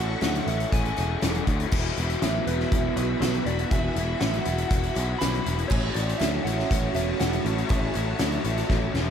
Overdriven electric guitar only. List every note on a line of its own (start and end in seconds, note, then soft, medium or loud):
0.00 0.21 A2 loud
0.00 0.21 E3 loud
0.00 0.21 A3 medium
0.00 0.22 C#4 medium
0.00 0.23 E4 medium
0.22 0.72 E3 medium
0.22 0.48 A3 loud
0.22 0.47 C#4 medium
0.22 0.47 E4 medium
0.47 0.72 A3 medium
0.47 0.72 C#4 medium
0.47 0.73 E4 medium
0.71 1.22 A2 loud
0.71 1.22 E3 loud
0.71 0.99 A3 loud
0.71 0.98 C#4 loud
0.71 0.97 E4 loud
0.97 1.23 A3 medium
0.97 1.23 C#4 medium
0.97 1.24 E4 medium
1.22 1.72 E3 medium
1.22 1.49 A3 medium
1.22 1.48 C#4 medium
1.22 1.48 E4 medium
1.48 1.72 A3 medium
1.48 1.71 C#4 medium
1.48 1.75 E4 medium
1.73 2.22 E3 loud
1.73 1.99 F#3 loud
1.73 1.99 B3 loud
1.73 1.97 E4 loud
1.97 2.22 F#3 medium
1.97 2.23 B3 medium
1.97 2.24 E4 medium
2.22 2.71 E3 medium
2.22 2.49 F#3 medium
2.22 2.48 B3 medium
2.22 2.46 E4 medium
2.47 2.72 F#3 medium
2.47 2.72 B3 medium
2.47 2.73 E4 medium
2.72 3.22 E3 loud
2.72 2.99 F#3 loud
2.72 2.96 B3 loud
2.72 2.96 E4 loud
2.97 3.23 F#3 medium
2.97 3.22 B3 medium
2.97 3.24 E4 medium
3.22 3.70 E3 medium
3.22 3.48 F#3 medium
3.22 3.46 B3 medium
3.22 3.45 E4 loud
3.46 3.71 F#3 medium
3.46 3.71 B3 medium
3.46 3.72 E4 medium
3.70 4.19 E3 loud
3.70 3.97 F#3 loud
3.70 3.95 B3 loud
3.70 3.95 E4 loud
3.95 4.20 F#3 medium
3.95 4.20 B3 medium
3.95 4.21 E4 medium
4.19 4.69 E3 medium
4.19 4.47 F#3 medium
4.19 4.45 B3 medium
4.19 4.44 E4 loud
4.45 4.70 F#3 medium
4.45 4.70 B3 medium
4.45 4.71 E4 medium
4.70 5.19 E3 loud
4.70 4.96 F#3 loud
4.70 4.94 B3 loud
4.70 4.94 E4 loud
4.94 5.20 F#3 medium
4.94 5.20 B3 medium
4.94 5.21 E4 medium
5.20 5.69 E3 loud
5.20 5.47 F#3 loud
5.20 5.44 B3 loud
5.20 5.44 E4 loud
5.45 5.70 F#3 medium
5.45 5.69 B3 medium
5.45 5.71 E4 medium
5.69 6.69 A2 loud
5.69 6.19 E3 loud
5.69 5.96 A3 loud
5.69 5.95 C#4 loud
5.69 5.94 E4 loud
5.94 6.20 A3 medium
5.94 6.21 C#4 medium
5.94 6.21 E4 medium
6.20 6.69 E3 medium
6.20 6.46 A3 medium
6.20 6.45 C#4 medium
6.20 6.44 E4 medium
6.45 6.69 A3 medium
6.45 6.70 C#4 medium
6.45 6.71 E4 medium
6.70 7.20 A2 loud
6.70 7.19 E3 loud
6.70 6.95 A3 loud
6.70 6.95 C#4 loud
6.70 6.94 E4 loud
6.95 7.19 A3 medium
6.95 7.19 C#4 medium
6.95 7.21 E4 medium
7.19 7.69 E3 medium
7.19 7.45 A3 medium
7.19 7.44 C#4 loud
7.19 7.44 E4 loud
7.45 7.69 A3 medium
7.45 7.69 C#4 medium
7.45 7.70 E4 medium
7.69 8.19 A2 loud
7.69 8.18 E3 loud
7.69 7.95 A3 loud
7.69 7.94 C#4 loud
7.69 7.94 E4 loud
7.94 8.18 A3 medium
7.94 8.19 C#4 medium
7.94 8.21 E4 medium
8.19 8.69 E3 medium
8.19 8.44 A3 medium
8.19 8.44 C#4 medium
8.19 8.43 E4 loud
8.44 8.69 A3 medium
8.44 8.69 C#4 medium
8.44 8.70 E4 medium
8.69 9.10 A2 medium
8.69 9.10 E3 loud
8.69 8.94 A3 loud
8.69 8.93 C#4 loud
8.69 8.93 E4 loud
8.93 9.10 A3 medium
8.93 9.10 C#4 medium
8.93 9.10 E4 medium